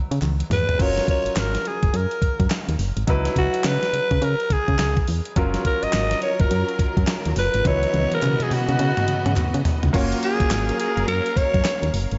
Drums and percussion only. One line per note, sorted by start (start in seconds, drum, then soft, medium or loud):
0.12 closed hi-hat medium
0.22 clap medium
0.22 closed hi-hat medium
0.22 high tom medium
0.40 closed hi-hat medium
0.51 mid tom medium
0.51 open hi-hat medium
0.69 closed hi-hat soft
0.69 floor tom medium
0.79 kick loud
0.79 closed hi-hat medium
0.79 crash loud
0.98 snare medium
0.98 closed hi-hat medium
1.08 kick medium
1.08 closed hi-hat medium
1.26 closed hi-hat soft
1.36 snare loud
1.36 clap medium
1.36 clap loud
1.36 closed hi-hat medium
1.55 snare medium
1.55 closed hi-hat medium
1.65 closed hi-hat medium
1.83 kick loud
1.83 closed hi-hat medium
1.94 closed hi-hat medium
2.11 closed hi-hat medium
2.22 kick medium
2.22 closed hi-hat medium
2.40 kick medium
2.40 closed hi-hat medium
2.50 snare loud
2.50 clap medium
2.50 closed hi-hat medium
2.69 closed hi-hat medium
2.79 open hi-hat medium
2.97 closed hi-hat medium
3.08 kick loud
3.08 closed hi-hat medium
3.25 snare medium
3.25 closed hi-hat soft
3.36 kick medium
3.36 closed hi-hat medium
3.54 closed hi-hat medium
3.64 snare loud
3.64 clap loud
3.64 clap medium
3.64 closed hi-hat medium
3.83 snare medium
3.83 closed hi-hat medium
3.94 closed hi-hat medium
4.11 kick loud
4.11 closed hi-hat medium
4.22 closed hi-hat medium
4.40 closed hi-hat soft
4.50 kick medium
4.50 closed hi-hat medium
4.68 kick loud
4.68 closed hi-hat medium
4.79 snare loud
4.79 clap medium
4.79 closed hi-hat medium
4.97 kick loud
4.97 closed hi-hat medium
5.07 open hi-hat medium
5.25 closed hi-hat medium
5.36 kick loud
5.36 closed hi-hat medium
5.54 snare medium
5.54 closed hi-hat medium
5.65 kick medium
5.65 closed hi-hat medium
5.83 closed hi-hat medium
5.93 snare loud
5.93 clap loud
5.93 clap medium
5.93 closed hi-hat medium
6.11 snare medium
6.11 closed hi-hat medium
6.22 closed hi-hat medium
6.40 kick loud
6.40 closed hi-hat medium
6.51 closed hi-hat medium
6.69 closed hi-hat soft
6.79 kick medium
6.79 closed hi-hat medium
6.97 kick loud
6.97 closed hi-hat medium
7.07 snare loud
7.07 clap medium
7.07 closed hi-hat medium
7.25 closed hi-hat medium
7.36 open hi-hat medium
7.54 closed hi-hat medium
7.65 kick loud
7.65 closed hi-hat medium
7.65 high tom medium
7.83 closed hi-hat soft
7.94 closed hi-hat medium
7.94 high tom medium
8.11 closed hi-hat medium
8.11 high tom medium
8.22 clap loud
8.22 closed hi-hat medium
8.22 mid tom medium
8.40 closed hi-hat medium
8.40 mid tom medium
8.51 open hi-hat medium
8.51 mid tom medium
8.69 closed hi-hat medium
8.69 mid tom medium
8.79 closed hi-hat medium
8.97 closed hi-hat soft
8.97 mid tom medium
9.08 closed hi-hat medium
9.26 closed hi-hat medium
9.26 mid tom medium
9.36 clap medium
9.36 closed hi-hat medium
9.36 floor tom loud
9.54 closed hi-hat medium
9.65 floor tom loud
9.65 open hi-hat medium
9.83 closed hi-hat medium
9.83 floor tom medium
9.94 kick loud
9.94 closed hi-hat medium
9.94 crash loud
9.94 tambourine medium
10.12 closed hi-hat soft
10.23 closed hi-hat medium
10.23 tambourine medium
10.40 kick medium
10.40 closed hi-hat medium
10.50 snare loud
10.50 clap loud
10.50 closed hi-hat medium
10.50 tambourine loud
10.69 closed hi-hat medium
10.80 closed hi-hat medium
10.97 closed hi-hat medium
11.08 closed hi-hat medium
11.08 tambourine medium
11.26 closed hi-hat medium
11.36 kick medium
11.36 closed hi-hat medium
11.36 tambourine medium
11.54 kick loud
11.54 closed hi-hat medium
11.65 snare loud
11.65 clap medium
11.65 closed hi-hat medium
11.65 tambourine loud
11.83 closed hi-hat medium
11.94 open hi-hat medium
11.94 tambourine medium
12.11 closed hi-hat medium